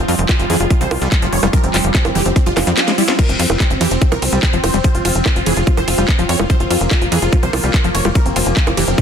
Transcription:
Already playing: F3 G3
0.08 F2 F4, open hi-hat
0.19 F1, closed hi-hat
0.29 G3 F4, kick, clap, closed hi-hat, high bongo
0.39 F1 F4, closed hi-hat
0.50 F2 E3 G#4, open hi-hat
0.60 F1 F4, closed hi-hat
0.70 F3 F4, kick, closed hi-hat
0.81 C2 F3 C5, closed hi-hat
0.91 C2 F4, open hi-hat, high bongo
1.01 C2 G3 F4, closed hi-hat
1.12 F3, kick, clap, closed hi-hat
1.22 F1 F3 F4, closed hi-hat
1.33 F1 C#5, open hi-hat
1.43 F1 G3 F4, closed hi-hat, high bongo
1.53 F3 A#4, kick, closed hi-hat
1.64 F1 C4, closed hi-hat
1.74 F1 C4 F4, clap, open hi-hat
1.84 F1, closed hi-hat
1.95 G3 C4, kick, clap, closed hi-hat
2.05 F1 C4, closed hi-hat, high bongo
2.15 F1 E3 G4, open hi-hat
2.26 F1 C4, closed hi-hat
2.36 F3 C4, kick, closed hi-hat, swell
2.46 F1 F3 F4, closed hi-hat
2.57 F1 E3 C4, snare, open hi-hat, high bongo
2.67 F2 F3 C4, closed hi-hat
2.77 snare, clap, closed hi-hat
2.88 G#3 C4, snare, closed hi-hat
2.98 G3 E4, open hi-hat
3.08 C4 F4, snare, closed hi-hat
3.19 F3 C4 A#4, kick, closed hi-hat, crash
3.29 F1 C4, closed hi-hat
3.39 F2 C4 F4, open hi-hat, ride
3.50 F1, closed hi-hat, high bongo
3.60 G3 C4, kick, clap, closed hi-hat
3.70 F1 C4, closed hi-hat
3.81 F2 E3 G4, open hi-hat, ride
3.91 F1 C4, closed hi-hat
4.01 F3 C4, kick, closed hi-hat
4.12 C2 F3 A#4, closed hi-hat, high bongo
4.22 C2 C4, open hi-hat, ride
4.33 C2 G3 C4, closed hi-hat
4.43 kick, clap, closed hi-hat
4.53 F1 F3 C4, closed hi-hat
4.64 F1 C5, open hi-hat, ride, high bongo
4.74 F1 G3 C4, closed hi-hat
4.84 F3 C5, kick, closed hi-hat
4.95 F1 F4, closed hi-hat
5.05 F1 F4, open hi-hat, ride
5.15 F1, closed hi-hat
5.26 G3 F4, kick, clap, closed hi-hat, high bongo
5.36 F1 F4, closed hi-hat
5.46 F1 E3 G#4, open hi-hat, ride
5.57 F1 F4, closed hi-hat
5.67 F3 F4, kick, closed hi-hat
5.77 F1 F3 C5, closed hi-hat, high bongo
5.88 F1 F4, open hi-hat, ride
5.98 F1 G3 F4, closed hi-hat
6.08 kick, clap, closed hi-hat
6.19 F1 F3 F4, closed hi-hat
6.29 F2 C#5, open hi-hat, ride
6.39 F1 G3 F4, high bongo
6.50 F3 A#3 C5, kick, closed hi-hat
6.60 F1 F4, closed hi-hat
6.70 F2 F4, open hi-hat, ride
6.81 F1, closed hi-hat
6.91 G3 F4, kick, clap, closed hi-hat, high bongo
7.01 F1 F4, closed hi-hat
7.12 F2 E3 G#4, open hi-hat, ride
7.22 F1 F4, closed hi-hat
7.32 F3 F4, kick, closed hi-hat
7.43 C2 F3 C5, closed hi-hat
7.53 C2 F4, open hi-hat, ride, high bongo
7.64 C2 G3 F4, closed hi-hat
7.74 F3, kick, clap, closed hi-hat
7.84 F1 F3 F4, closed hi-hat
7.95 F1 C#5, open hi-hat, ride
8.05 F1 G3 F4, closed hi-hat, high bongo
8.15 F3 A#4, kick, closed hi-hat
8.26 F1 C4, closed hi-hat
8.36 F1 C4 F4, open hi-hat, ride
8.46 F1, closed hi-hat
8.57 G3 C4, kick, clap, closed hi-hat
8.67 F1 C4, closed hi-hat, high bongo
8.77 F1 E3 G4, open hi-hat, ride
8.88 F1 C4, closed hi-hat
8.98 F3 C4, kick, closed hi-hat

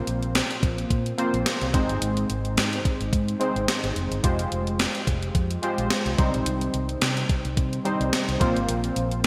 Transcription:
Already playing: A#2 A#3 C4 F4 C5
0.07 A#1, closed hi-hat
0.23 closed hi-hat
0.35 snare, closed hi-hat
0.51 closed hi-hat
0.63 A#1, kick, closed hi-hat
0.78 closed hi-hat
0.90 A#2, kick, closed hi-hat
1.06 closed hi-hat
1.18 A#3 C4 F4 C5, closed hi-hat
1.34 A#1, closed hi-hat
1.46 snare, closed hi-hat
1.61 C2, closed hi-hat
1.73 G#1 G#2 G#3 C4 D#4 C5, kick, closed hi-hat
1.89 G1, closed hi-hat
2.02 G#1, closed hi-hat
2.17 closed hi-hat
2.30 G#1, closed hi-hat
2.45 closed hi-hat
2.57 G#2, snare, closed hi-hat
2.73 closed hi-hat
2.85 kick, closed hi-hat
3.00 G#1, closed hi-hat
3.13 G#2, kick, closed hi-hat
3.28 closed hi-hat
3.40 G#3 C4 D#4 C5, closed hi-hat
3.56 G#1, closed hi-hat
3.68 snare, closed hi-hat
3.83 G#1, closed hi-hat
3.96 F1, closed hi-hat
4.11 G1, closed hi-hat
4.23 F1 G#3 F4 G4 C5, kick, closed hi-hat
4.39 closed hi-hat
4.52 F1, closed hi-hat
4.67 closed hi-hat
4.79 snare, closed hi-hat
4.95 closed hi-hat
5.07 F1, kick, closed hi-hat
5.22 closed hi-hat
5.35 F2, kick, closed hi-hat
5.51 closed hi-hat
5.62 G#3 F4 G4 C5, closed hi-hat
5.78 A#1, closed hi-hat
5.90 snare, closed hi-hat
6.06 C2, closed hi-hat
6.18 C2 C3 G3 C4 D#4 C5, kick, closed hi-hat
6.34 A#1, closed hi-hat
6.46 C2, closed hi-hat
6.61 closed hi-hat
6.74 C2, closed hi-hat
6.89 closed hi-hat
7.01 C3, snare, closed hi-hat
7.17 closed hi-hat
7.29 kick, closed hi-hat
7.45 C2, closed hi-hat
7.57 C3, kick, closed hi-hat
7.73 closed hi-hat
7.85 G3 C4 D#4 C5, closed hi-hat
8.00 C2, closed hi-hat
8.13 snare, closed hi-hat
8.28 C2, closed hi-hat
8.40 A#1 A#2 A#3 C4 F4 C5, kick, closed hi-hat
8.56 G#1, closed hi-hat
8.68 A#1, closed hi-hat
8.84 closed hi-hat
8.96 A#1, closed hi-hat
9.11 closed hi-hat

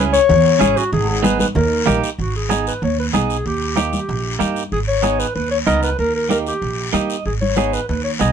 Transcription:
Already playing: C#2 C#4 E4 G#4
0.13 C#5, short guiro
0.29 E2, low conga, long guiro
0.59 G#1 C#4 E4 G#4, high conga, short guiro
0.77 F#4, short guiro
0.92 G#1 G#4, low conga, long guiro
1.09 G#4
1.23 B3 D#4 G#4 B4, high conga, short guiro
1.40 B4, high conga, short guiro
1.55 D#2 A#4, low conga, long guiro
1.86 A#1 A#3 D#4 G4, high conga, low conga, short guiro
2.04 short guiro
2.19 G#1 F#4, high conga, long guiro
2.36 G#4
2.49 B3 D#4 G#4, high conga, short guiro
2.67 B4, short guiro
2.82 D#2 C#5, high conga, long guiro
2.99 B4
3.13 B1 B3 D#4 G#4, high conga, short guiro
3.30 short guiro
3.46 D#2 G4, high conga, long guiro
3.76 A#3 D#4 G4, high conga, short guiro
3.93 high conga, short guiro
4.09 A#1, high conga, long guiro
4.39 G2 A#3 D#4 G4, high conga, short guiro
4.56 short guiro
4.72 G#1 G#4, high conga, long guiro
4.88 C#5
5.02 B3 D#4 G#4, high conga, short guiro
5.19 B4, short guiro
5.35 D#2 B4, high conga, long guiro
5.51 C#5
5.67 C#2 B3 D#4 A#4 D#5, high conga, short guiro
5.83 B4, short guiro
5.99 D#2 A#4, high conga, long guiro
6.15 A#4
6.29 A#3 D#4 G4 A#4, high conga, short guiro
6.47 G4, short guiro
6.62 A#1, high conga, long guiro
6.93 G2 A#3 D#4 G4 D#5, high conga, short guiro
7.10 short guiro
7.26 G#1 G#4, high conga, long guiro
7.41 C#5, high conga
7.56 B3 D#4 G#4, high conga, short guiro
7.73 B4, short guiro
7.88 D#2 B4, high conga, long guiro
8.04 C#5
8.20 B1 B3 D#4 G#4 D#5, high conga, short guiro

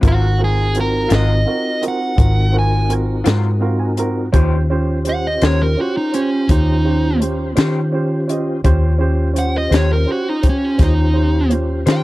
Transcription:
0.01 G#1 G#2 F#3 C4 D#4 F4 F#4 A#4, kick, closed hi-hat
0.08 F#4
0.38 C4 F4 F#4 A#4
0.44 G#4
0.75 C4 F4 F#4 A#4, closed hi-hat
0.80 A#4
1.09 G#1 G#2 F#3 C4 F4 F#4, snare, closed hi-hat
1.13 A#4 D#5
1.46 C4 F4 F#4 A#4
1.81 C4 F4 F#4 A#4, closed hi-hat
1.88 F#5
2.16 G#1 C4 F4 F#4 A#4, kick, closed hi-hat
2.52 C4 F4 F#4 A#4
2.59 G#5
2.89 C4 F4 F#4 A#4, closed hi-hat
3.24 G#2 F#3 C4 F4 F#4 A#4, snare, closed hi-hat
3.60 C4 F4 F#4 A#4 F5
3.79 G#5
3.97 C4 F4 F#4 A#4 A#5, closed hi-hat
4.32 D#2 D#3 C#4 F4 G4 C5, kick, closed hi-hat
4.70 C#4 F4 G4 C5
5.05 C#4 F4 G4 C5, closed hi-hat
5.09 F#5
5.27 D#5
5.42 D#2 D#3 C#4 F4 G4 A#4 C5 C#5, snare, closed hi-hat
5.63 A#4
5.77 C#4 F4 F#4 G4 C5
5.97 D#4
6.13 C#4 F4 G4 C5, closed hi-hat
6.49 D#2 C#4 D#4 F4 G4 C5, kick, closed hi-hat
6.85 C#4 F4 G4 C5
7.20 C#4 F4 G4 C5, closed hi-hat
7.56 D#3 C#4 F4 G4 C5, snare, closed hi-hat
7.92 C#4 F4 G4 C5
8.28 C#4 F4 G4 D#5, closed hi-hat
8.64 D#2 C#4 F4 G4 C5, kick, closed hi-hat
8.98 C#4 F4 G4 C5
9.34 C#4 F4 G4 C5, closed hi-hat
9.39 F#5
9.58 D#5
9.70 D#2 D#3 C#4 F4 G4 C5, closed hi-hat
9.74 C#5, snare
9.93 A#4
10.06 C#4 F4 G4 C5
10.12 F#4
10.29 D#4
10.43 C#4 F4 G4 C5, kick, closed hi-hat
10.49 C#4
10.78 D#2 C#4 F4 G4 C5, kick, snare, closed hi-hat
10.84 D#4
11.14 C#4 F4 G4 C5
11.50 C#4 F4 G4 C5, closed hi-hat
11.86 D#3 C#4 F4 G4 C5, snare, closed hi-hat
11.92 G5

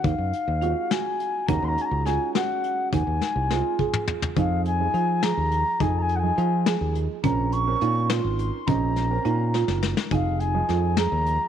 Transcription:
0.04 D#2 D#4 F5, kick, closed hi-hat
0.18 F#2
0.33 closed hi-hat
0.48 D#2
0.62 G#3 C4 F4 F#4, closed hi-hat
0.91 F#4 G#5, snare, closed hi-hat
1.20 closed hi-hat
1.47 D#2 G#3 C#4 D#4 F#4 A#5, kick, closed hi-hat
1.62 D#2 C6
1.68 A#5
1.78 G#5, closed hi-hat
1.85 A#5
1.91 C#2
2.06 G#3 C#4 F4 F#4 G#5, snare, closed hi-hat
2.34 G#3 C#4 F#4 F#5, snare, closed hi-hat
2.64 closed hi-hat
2.93 D#2 D#4 G#5, kick, closed hi-hat
3.07 D#2
3.21 snare
3.36 C2
3.50 G#3 C4 F4, snare
3.79 G#4, kick
3.93 mid tom
4.08 floor tom
4.22 floor tom
4.36 F2 F3 D#4 G#4 F5, kick, closed hi-hat
4.65 G#5, closed hi-hat
4.80 F3 D#4 G#4
4.94 F3 F4, closed hi-hat
5.23 G#4 A#5, snare, closed hi-hat
5.37 D#2
5.51 closed hi-hat
5.80 F2 F3 D#4 G#4 G#5, kick, closed hi-hat
5.98 G#5 A#5
6.09 closed hi-hat
6.15 F#5 G#5
6.23 F3 D#4 G#4
6.38 F3 F4, closed hi-hat
6.66 G#4, snare, closed hi-hat
6.81 D#2
6.95 closed hi-hat
7.24 A#1 C4 C#4 A#4 A#5, kick, closed hi-hat
7.52 C#6, closed hi-hat
7.67 C4 C#4 A#4
7.81 A#2 D#4, closed hi-hat
8.10 F4 C6, snare, closed hi-hat
8.24 G#1
8.39 closed hi-hat
8.67 A#1 C4 C#4 D#4 A#5, kick, closed hi-hat
8.96 snare, closed hi-hat
9.11 C4 C#4 A#4
9.25 A#2 D#4, closed hi-hat
9.54 F4, snare
9.68 F#1, snare
9.83 snare
9.97 snare
10.11 F1 F3 D#4 G#4 F5 G#5, kick, closed hi-hat
10.40 G#5, closed hi-hat
10.54 F3 D#4 G#4
10.69 F2 F4, snare, closed hi-hat
10.97 G#4 A#5, snare, closed hi-hat
11.12 D#2
11.26 closed hi-hat

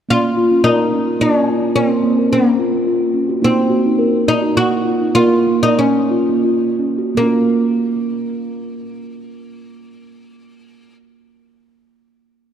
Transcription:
0.09 A#3 C#4 F4
0.37 F4
0.52 C#4
0.64 D#4 A#4
0.93 C#4
1.07 F4
1.20 A#3 C#4
1.48 F4
1.62 C#4
1.75 A#3 C4 A#4
2.03 A#3
2.18 A#4
2.32 A#3 C#4
2.59 F4
2.74 A#3
2.87 F4
3.14 C#4
3.29 F#4
3.42 A#3 C4 D#4
3.70 F#4
3.86 D#4
3.99 A#4
4.27 D#4
4.42 F#4
4.55 A#3 F#4
4.85 F4
5.02 D#4
5.15 A#3 F4 A#4
5.47 A#3
5.63 D#4 A#4
5.78 C#4
6.11 F4
6.29 A#3
6.45 F4
6.79 C#4
6.98 F#4
7.15 A#3
7.20 C#4 F4
7.28 A#4

